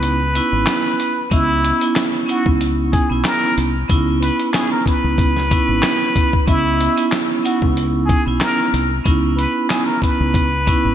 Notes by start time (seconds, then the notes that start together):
Already playing: C#2 B3 C#4 D#4 E4 B4
0.02 closed hi-hat, shaker
0.20 shaker
0.34 B3 C#4 D#4 E4, closed hi-hat
0.52 G#1, shaker
0.66 snare, clap, closed hi-hat, shaker
0.85 shaker
1.00 closed hi-hat
1.17 shaker
1.30 C#2 B3 C#4 E4 D#5, kick, closed hi-hat, shaker
1.49 shaker
1.64 closed hi-hat
1.80 B3 C#4 D#4 E4, closed hi-hat, shaker
1.96 snare, clap, closed hi-hat, shaker
2.14 shaker
2.26 B3 C#4 D#4 E4, closed hi-hat, shaker
2.31 F#4
2.46 C#2, kick, shaker
2.60 closed hi-hat, shaker
2.78 shaker
2.93 G#4, kick, closed hi-hat
3.09 B1 B3 C#4 D#4 E4, shaker
3.24 A#4, snare, clap, closed hi-hat, shaker
3.43 shaker
3.57 C2, closed hi-hat
3.75 shaker
3.88 C#2 B3 C#4 D#4 E4, kick, closed hi-hat, shaker
4.07 shaker
4.20 B4, closed hi-hat
4.39 closed hi-hat, shaker
4.53 B3 C#4 D#4 E4 G#4, snare, clap, closed hi-hat, shaker
4.72 A#4, shaker
4.86 B4, kick, closed hi-hat, shaker
5.04 C#2, shaker
5.18 kick, closed hi-hat, shaker
5.36 snare, shaker
5.50 B3 C#4 D#4 E4, kick, closed hi-hat
5.68 G#1, shaker
5.83 snare, clap, closed hi-hat, shaker
6.01 shaker
6.16 kick, closed hi-hat
6.33 kick, shaker
6.46 C#2 B3 C#4 E4 D#5, kick, closed hi-hat, shaker
6.65 shaker
6.81 closed hi-hat
6.96 B3 C#4 D#4 E4, closed hi-hat, shaker
7.12 snare, clap, closed hi-hat, shaker
7.30 shaker
7.42 B3 C#4 D#4 E4 F#4, closed hi-hat, shaker
7.62 C#2, kick, shaker
7.76 closed hi-hat, shaker
7.94 shaker
8.06 G#4, kick, closed hi-hat
8.25 B1 B3 C#4 D#4 E4, shaker
8.41 A#4, snare, clap, closed hi-hat, shaker
8.59 shaker
8.74 C2, closed hi-hat
8.91 shaker
9.04 C#2 B3 C#4 D#4 E4, kick, closed hi-hat, shaker
9.23 shaker
9.36 B4, closed hi-hat
9.56 shaker
9.70 B3 C#4 D#4 E4 G#4, snare, clap, closed hi-hat, shaker
9.86 A#4, shaker
10.02 B4, kick, closed hi-hat, shaker
10.20 C#2, shaker
10.34 kick, closed hi-hat, shaker
10.52 shaker
10.66 B3 C#4 D#4 E4, kick, closed hi-hat
10.84 G#1, shaker